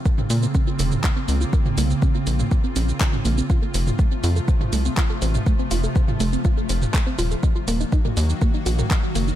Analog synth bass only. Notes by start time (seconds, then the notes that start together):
0.30 A#2
0.79 F1
1.28 C#2
1.78 C2
2.27 A#1
2.76 A#1
3.25 A#1
3.74 F1
4.24 F2
4.73 C2
5.22 A1
5.71 F1
6.20 F1
6.69 F1
7.19 D#1
7.68 D#1
8.17 D#2
8.66 A#1
9.15 F#1